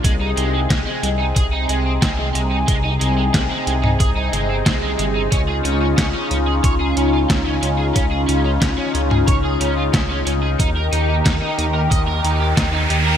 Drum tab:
HH |x-x-x-x-x-x-x-x-|x-x-x-x-x-x-x-x-|x-x-x-x-x-x-x-x-|x-x-x-x-x-x-x-x-|
SD |----o-------o---|----o-------o---|----o-------o---|----o-------o---|
T2 |----------------|-------o--------|----------------|-------o--------|
BD |o---o---o---o---|o---o---o---o---|o---o---o---o---|o---o---o---o---|

HH |x-x-x-x-x-x-x-x-|
SD |----o-------o---|
T2 |----------------|
BD |o---o---o---o---|